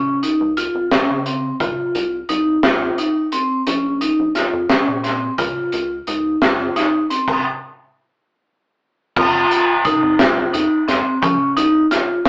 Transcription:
Already playing: vibraphone C#4
0.23 vibraphone D#4, closed hi-hat
0.40 analog synth bass C#2
0.57 vibraphone F4, closed hi-hat
0.75 analog synth bass G#1
0.91 analog synth bass C#2, vibraphone C#4, snare, closed hi-hat
1.09 analog synth bass C#3
1.26 vibraphone C4, closed hi-hat
1.60 analog synth bass C2, vibraphone F4, kick, closed hi-hat
1.95 analog synth bass C2, closed hi-hat
2.29 analog synth bass C2, vibraphone D#4, closed hi-hat
2.63 analog synth bass D#2, vibraphone F4, snare, closed hi-hat
2.98 vibraphone D#4, closed hi-hat
3.32 vibraphone C4, closed hi-hat
3.67 analog synth bass A#1, vibraphone C#4, closed hi-hat
4.01 vibraphone D#4, closed hi-hat
4.19 analog synth bass A#1
4.35 vibraphone F4, snare, closed hi-hat
4.53 analog synth bass F2
4.70 analog synth bass A#1, vibraphone C#4, snare, closed hi-hat
4.87 analog synth bass A#2
5.04 vibraphone C4, snare, closed hi-hat
5.38 analog synth bass C#2, vibraphone F4, kick, closed hi-hat
5.72 analog synth bass C#2, closed hi-hat
6.07 analog synth bass C#2, vibraphone D#4, closed hi-hat
6.42 analog synth bass F2, vibraphone F4, snare, closed hi-hat
6.76 vibraphone D#4, snare, closed hi-hat
7.10 vibraphone C4, closed hi-hat
7.28 kick, crash
9.16 analog synth bass F2, vibraphone F4, kick, crash
9.51 closed hi-hat
9.85 vibraphone D#4, kick, closed hi-hat
10.03 analog synth bass F2
10.19 vibraphone F4, snare, closed hi-hat
10.37 analog synth bass C2
10.53 analog synth bass F2, vibraphone D#4, closed hi-hat
10.88 analog synth bass F2, vibraphone C4, snare, closed hi-hat
11.22 analog synth bass F3, vibraphone C#4, kick, closed hi-hat
11.56 analog synth bass C2, vibraphone D#4, closed hi-hat
11.91 vibraphone F4, snare, closed hi-hat
12.25 analog synth bass G2, snare, closed hi-hat

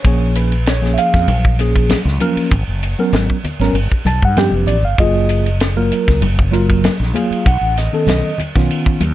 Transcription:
0.02 fretless electric bass A#1, tine electric piano F3 A#3 C#4 G#4 C5, kick, ride, muted conga
0.07 tine electric piano C#5
0.35 tine electric piano B4, hi-hat pedal, ride
0.52 ride
0.66 tine electric piano C#5, snare, ride, muted conga
0.82 tine electric piano F3 A#3 C#4 G#4, snare
0.94 tine electric piano E5, hi-hat pedal, ride
0.98 tine electric piano F5
1.14 fretless electric bass F2, kick, snare, ride
1.28 fretless electric bass A#1, ride, muted conga, high conga
1.45 kick
1.59 tine electric piano F3 A#3 C#4 G#4, hi-hat pedal, ride, muted conga
1.76 kick, ride
1.89 snare, ride, high conga
2.05 fretless electric bass C#2, snare
2.20 tine electric piano F3 A#3 C#4 A#4, hi-hat pedal, ride, high conga
2.36 muted fretless electric bass stroke, ride
2.51 fretless electric bass G#1, kick, ride, muted conga
2.67 fretless electric bass F#1
2.83 hi-hat pedal, ride
2.99 tine electric piano F#3 B3 C#4 A#4
3.13 fretless electric bass G#1, snare, ride, muted conga, high conga
3.30 kick
3.43 muted fretless electric bass stroke, hi-hat pedal, ride, low conga
3.59 fretless electric bass G#1, tine electric piano F#3 B3 C#4 A#4, snare, ride
3.73 fretless electric bass G1, ride, muted conga
3.92 kick
4.05 fretless electric bass B1, tine electric piano A5, hi-hat pedal, ride, muted conga, high conga
4.22 fretless electric bass G2, tine electric piano F#5, kick
4.37 tine electric piano F3 B3 C#4 G4 G5, snare, ride, high conga
4.51 fretless electric bass F1, tine electric piano B4
4.66 fretless electric bass A1, tine electric piano D5, hi-hat pedal, ride
4.83 fretless electric bass G1, tine electric piano F5
4.98 fretless electric bass F#1, tine electric piano F#3 A#3 F4 G#4 D#5, kick, ride, muted conga
5.29 hi-hat pedal, ride
5.46 ride
5.60 snare, ride, muted conga
5.76 tine electric piano F#3 A#3 F4 A#4
5.92 hi-hat pedal, ride
6.08 fretless electric bass C#2, kick, snare, ride
6.21 fretless electric bass F#1, ride, muted conga, high conga
6.39 kick
6.51 tine electric piano F#3 A#3 F4 A#4, hi-hat pedal, ride, muted conga
6.70 kick, ride
6.84 snare, ride, high conga
7.00 fretless electric bass A#1, snare
7.13 tine electric piano F#3 A#3 F4 G#4 F5, hi-hat pedal, ride, high conga
7.31 muted fretless electric bass stroke, ride
7.46 fretless electric bass B1, tine electric piano F#5, kick, ride, muted conga
7.61 fretless electric bass A1
7.77 tine electric piano D#5, snare, hi-hat pedal, ride
7.92 tine electric piano D#3 B3 C#4 A4
8.06 fretless electric bass B1, tine electric piano D#5, snare, ride, muted conga, high conga
8.38 muted fretless electric bass stroke, hi-hat pedal, ride, low conga
8.55 fretless electric bass B1, tine electric piano D#3 B3 C#4 F4, kick, snare, ride
8.69 ride, muted conga
8.86 muted fretless electric bass stroke, kick
9.00 fretless electric bass D#2, hi-hat pedal, ride, muted conga, high conga

